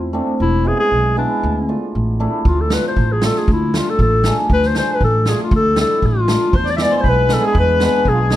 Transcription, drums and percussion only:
0, 0, Header, 1, 2, 480
1, 0, Start_track
1, 0, Tempo, 511073
1, 370, Time_signature, 2, 2, 24, 8
1, 7855, End_track
2, 0, Start_track
2, 0, Title_t, "Drums"
2, 2303, Note_on_c, 9, 36, 78
2, 2397, Note_off_c, 9, 36, 0
2, 2539, Note_on_c, 9, 38, 80
2, 2633, Note_off_c, 9, 38, 0
2, 2785, Note_on_c, 9, 36, 66
2, 2879, Note_off_c, 9, 36, 0
2, 3020, Note_on_c, 9, 38, 82
2, 3114, Note_off_c, 9, 38, 0
2, 3147, Note_on_c, 9, 38, 30
2, 3241, Note_off_c, 9, 38, 0
2, 3267, Note_on_c, 9, 36, 75
2, 3361, Note_off_c, 9, 36, 0
2, 3511, Note_on_c, 9, 38, 75
2, 3605, Note_off_c, 9, 38, 0
2, 3746, Note_on_c, 9, 36, 66
2, 3840, Note_off_c, 9, 36, 0
2, 3979, Note_on_c, 9, 38, 79
2, 4073, Note_off_c, 9, 38, 0
2, 4223, Note_on_c, 9, 36, 73
2, 4317, Note_off_c, 9, 36, 0
2, 4344, Note_on_c, 9, 38, 28
2, 4438, Note_off_c, 9, 38, 0
2, 4459, Note_on_c, 9, 38, 72
2, 4553, Note_off_c, 9, 38, 0
2, 4702, Note_on_c, 9, 36, 59
2, 4795, Note_off_c, 9, 36, 0
2, 4935, Note_on_c, 9, 38, 67
2, 5029, Note_off_c, 9, 38, 0
2, 5178, Note_on_c, 9, 36, 83
2, 5272, Note_off_c, 9, 36, 0
2, 5412, Note_on_c, 9, 38, 81
2, 5506, Note_off_c, 9, 38, 0
2, 5658, Note_on_c, 9, 36, 59
2, 5752, Note_off_c, 9, 36, 0
2, 5898, Note_on_c, 9, 38, 80
2, 5992, Note_off_c, 9, 38, 0
2, 6135, Note_on_c, 9, 36, 82
2, 6229, Note_off_c, 9, 36, 0
2, 6254, Note_on_c, 9, 38, 24
2, 6348, Note_off_c, 9, 38, 0
2, 6370, Note_on_c, 9, 38, 77
2, 6464, Note_off_c, 9, 38, 0
2, 6611, Note_on_c, 9, 36, 55
2, 6705, Note_off_c, 9, 36, 0
2, 6844, Note_on_c, 9, 38, 69
2, 6938, Note_off_c, 9, 38, 0
2, 7089, Note_on_c, 9, 36, 67
2, 7183, Note_off_c, 9, 36, 0
2, 7326, Note_on_c, 9, 38, 75
2, 7420, Note_off_c, 9, 38, 0
2, 7563, Note_on_c, 9, 36, 54
2, 7657, Note_off_c, 9, 36, 0
2, 7798, Note_on_c, 9, 38, 66
2, 7855, Note_off_c, 9, 38, 0
2, 7855, End_track
0, 0, End_of_file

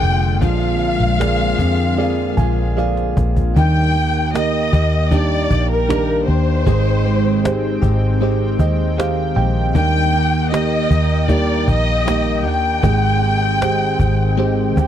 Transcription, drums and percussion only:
0, 0, Header, 1, 2, 480
1, 0, Start_track
1, 0, Key_signature, -3, "major"
1, 0, Tempo, 784314
1, 253, Time_signature, 4, 2, 24, 8
1, 2656, Tempo, 772201
1, 9203, End_track
2, 0, Start_track
2, 0, Title_t, "Cajon"
2, 254, Note_on_c, 9, 36, 86
2, 316, Note_off_c, 9, 36, 0
2, 740, Note_on_c, 9, 38, 104
2, 801, Note_off_c, 9, 38, 0
2, 973, Note_on_c, 9, 36, 81
2, 1034, Note_off_c, 9, 36, 0
2, 1212, Note_on_c, 9, 38, 52
2, 1273, Note_off_c, 9, 38, 0
2, 1452, Note_on_c, 9, 36, 78
2, 1514, Note_off_c, 9, 36, 0
2, 1700, Note_on_c, 9, 38, 45
2, 1705, Note_off_c, 9, 38, 0
2, 1705, Note_on_c, 9, 38, 52
2, 1767, Note_off_c, 9, 38, 0
2, 1819, Note_on_c, 9, 38, 49
2, 1880, Note_off_c, 9, 38, 0
2, 1939, Note_on_c, 9, 36, 88
2, 2000, Note_off_c, 9, 36, 0
2, 2059, Note_on_c, 9, 36, 79
2, 2120, Note_off_c, 9, 36, 0
2, 2181, Note_on_c, 9, 36, 89
2, 2242, Note_off_c, 9, 36, 0
2, 2665, Note_on_c, 9, 38, 114
2, 2727, Note_off_c, 9, 38, 0
2, 2899, Note_on_c, 9, 36, 80
2, 2961, Note_off_c, 9, 36, 0
2, 3137, Note_on_c, 9, 36, 96
2, 3139, Note_on_c, 9, 38, 54
2, 3200, Note_off_c, 9, 36, 0
2, 3201, Note_off_c, 9, 38, 0
2, 3380, Note_on_c, 9, 36, 84
2, 3442, Note_off_c, 9, 36, 0
2, 3627, Note_on_c, 9, 38, 120
2, 3690, Note_off_c, 9, 38, 0
2, 3859, Note_on_c, 9, 38, 38
2, 3921, Note_off_c, 9, 38, 0
2, 4102, Note_on_c, 9, 36, 102
2, 4164, Note_off_c, 9, 36, 0
2, 4342, Note_on_c, 9, 38, 40
2, 4405, Note_off_c, 9, 38, 0
2, 4591, Note_on_c, 9, 38, 119
2, 4653, Note_off_c, 9, 38, 0
2, 4822, Note_on_c, 9, 36, 83
2, 4884, Note_off_c, 9, 36, 0
2, 4949, Note_on_c, 9, 38, 36
2, 5011, Note_off_c, 9, 38, 0
2, 5060, Note_on_c, 9, 38, 51
2, 5123, Note_off_c, 9, 38, 0
2, 5300, Note_on_c, 9, 36, 85
2, 5362, Note_off_c, 9, 36, 0
2, 5550, Note_on_c, 9, 38, 109
2, 5612, Note_off_c, 9, 38, 0
2, 5776, Note_on_c, 9, 38, 38
2, 5839, Note_off_c, 9, 38, 0
2, 6019, Note_on_c, 9, 36, 99
2, 6081, Note_off_c, 9, 36, 0
2, 6509, Note_on_c, 9, 38, 108
2, 6571, Note_off_c, 9, 38, 0
2, 6738, Note_on_c, 9, 36, 87
2, 6800, Note_off_c, 9, 36, 0
2, 6975, Note_on_c, 9, 36, 89
2, 6977, Note_on_c, 9, 38, 54
2, 7037, Note_off_c, 9, 36, 0
2, 7039, Note_off_c, 9, 38, 0
2, 7217, Note_on_c, 9, 36, 86
2, 7279, Note_off_c, 9, 36, 0
2, 7466, Note_on_c, 9, 38, 106
2, 7528, Note_off_c, 9, 38, 0
2, 7935, Note_on_c, 9, 36, 100
2, 7997, Note_off_c, 9, 36, 0
2, 8424, Note_on_c, 9, 38, 110
2, 8486, Note_off_c, 9, 38, 0
2, 8657, Note_on_c, 9, 36, 93
2, 8719, Note_off_c, 9, 36, 0
2, 8785, Note_on_c, 9, 38, 37
2, 8847, Note_off_c, 9, 38, 0
2, 9140, Note_on_c, 9, 36, 84
2, 9202, Note_off_c, 9, 36, 0
2, 9203, End_track
0, 0, End_of_file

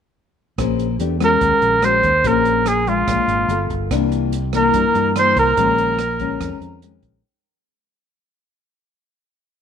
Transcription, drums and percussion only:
0, 0, Header, 1, 2, 480
1, 0, Start_track
1, 0, Key_signature, -5, "minor"
1, 0, Tempo, 415512
1, 675, Time_signature, 4, 2, 24, 8
1, 11112, End_track
2, 0, Start_track
2, 0, Title_t, "Drums"
2, 674, Note_on_c, 9, 36, 59
2, 676, Note_on_c, 9, 37, 60
2, 676, Note_on_c, 9, 42, 41
2, 790, Note_off_c, 9, 36, 0
2, 792, Note_off_c, 9, 37, 0
2, 792, Note_off_c, 9, 42, 0
2, 917, Note_on_c, 9, 42, 25
2, 1033, Note_off_c, 9, 42, 0
2, 1152, Note_on_c, 9, 42, 41
2, 1267, Note_off_c, 9, 42, 0
2, 1392, Note_on_c, 9, 37, 54
2, 1392, Note_on_c, 9, 42, 25
2, 1508, Note_off_c, 9, 37, 0
2, 1508, Note_off_c, 9, 42, 0
2, 1630, Note_on_c, 9, 42, 46
2, 1631, Note_on_c, 9, 36, 65
2, 1746, Note_off_c, 9, 42, 0
2, 1747, Note_off_c, 9, 36, 0
2, 1869, Note_on_c, 9, 42, 28
2, 1985, Note_off_c, 9, 42, 0
2, 2107, Note_on_c, 9, 37, 60
2, 2107, Note_on_c, 9, 42, 47
2, 2223, Note_off_c, 9, 37, 0
2, 2223, Note_off_c, 9, 42, 0
2, 2347, Note_on_c, 9, 42, 26
2, 2350, Note_on_c, 9, 36, 52
2, 2463, Note_off_c, 9, 42, 0
2, 2465, Note_off_c, 9, 36, 0
2, 2589, Note_on_c, 9, 42, 42
2, 2590, Note_on_c, 9, 36, 60
2, 2705, Note_off_c, 9, 36, 0
2, 2705, Note_off_c, 9, 42, 0
2, 2833, Note_on_c, 9, 42, 25
2, 2948, Note_off_c, 9, 42, 0
2, 3070, Note_on_c, 9, 37, 55
2, 3070, Note_on_c, 9, 42, 43
2, 3186, Note_off_c, 9, 37, 0
2, 3186, Note_off_c, 9, 42, 0
2, 3316, Note_on_c, 9, 42, 22
2, 3431, Note_off_c, 9, 42, 0
2, 3552, Note_on_c, 9, 36, 66
2, 3554, Note_on_c, 9, 37, 63
2, 3554, Note_on_c, 9, 42, 45
2, 3668, Note_off_c, 9, 36, 0
2, 3669, Note_off_c, 9, 37, 0
2, 3669, Note_off_c, 9, 42, 0
2, 3794, Note_on_c, 9, 42, 25
2, 3910, Note_off_c, 9, 42, 0
2, 4035, Note_on_c, 9, 42, 44
2, 4150, Note_off_c, 9, 42, 0
2, 4273, Note_on_c, 9, 36, 55
2, 4276, Note_on_c, 9, 42, 27
2, 4389, Note_off_c, 9, 36, 0
2, 4391, Note_off_c, 9, 42, 0
2, 4513, Note_on_c, 9, 36, 62
2, 4515, Note_on_c, 9, 37, 59
2, 4515, Note_on_c, 9, 42, 43
2, 4628, Note_off_c, 9, 36, 0
2, 4631, Note_off_c, 9, 37, 0
2, 4631, Note_off_c, 9, 42, 0
2, 4757, Note_on_c, 9, 42, 27
2, 4872, Note_off_c, 9, 42, 0
2, 4996, Note_on_c, 9, 42, 44
2, 5111, Note_off_c, 9, 42, 0
2, 5232, Note_on_c, 9, 37, 57
2, 5232, Note_on_c, 9, 42, 26
2, 5347, Note_off_c, 9, 37, 0
2, 5347, Note_off_c, 9, 42, 0
2, 5472, Note_on_c, 9, 42, 48
2, 5474, Note_on_c, 9, 36, 67
2, 5587, Note_off_c, 9, 42, 0
2, 5590, Note_off_c, 9, 36, 0
2, 5717, Note_on_c, 9, 42, 28
2, 5833, Note_off_c, 9, 42, 0
2, 5957, Note_on_c, 9, 37, 62
2, 5957, Note_on_c, 9, 42, 45
2, 6073, Note_off_c, 9, 37, 0
2, 6073, Note_off_c, 9, 42, 0
2, 6197, Note_on_c, 9, 36, 53
2, 6199, Note_on_c, 9, 42, 28
2, 6313, Note_off_c, 9, 36, 0
2, 6314, Note_off_c, 9, 42, 0
2, 6437, Note_on_c, 9, 36, 60
2, 6437, Note_on_c, 9, 42, 45
2, 6553, Note_off_c, 9, 36, 0
2, 6553, Note_off_c, 9, 42, 0
2, 6678, Note_on_c, 9, 42, 29
2, 6794, Note_off_c, 9, 42, 0
2, 6915, Note_on_c, 9, 37, 59
2, 6915, Note_on_c, 9, 42, 43
2, 7030, Note_off_c, 9, 37, 0
2, 7030, Note_off_c, 9, 42, 0
2, 7156, Note_on_c, 9, 42, 26
2, 7159, Note_on_c, 9, 36, 52
2, 7272, Note_off_c, 9, 42, 0
2, 7274, Note_off_c, 9, 36, 0
2, 7400, Note_on_c, 9, 36, 65
2, 7400, Note_on_c, 9, 37, 63
2, 7400, Note_on_c, 9, 42, 45
2, 7515, Note_off_c, 9, 36, 0
2, 7516, Note_off_c, 9, 37, 0
2, 7516, Note_off_c, 9, 42, 0
2, 7644, Note_on_c, 9, 42, 26
2, 7759, Note_off_c, 9, 42, 0
2, 7882, Note_on_c, 9, 42, 43
2, 7998, Note_off_c, 9, 42, 0
2, 8116, Note_on_c, 9, 42, 26
2, 8120, Note_on_c, 9, 36, 56
2, 8232, Note_off_c, 9, 42, 0
2, 8236, Note_off_c, 9, 36, 0
2, 11112, End_track
0, 0, End_of_file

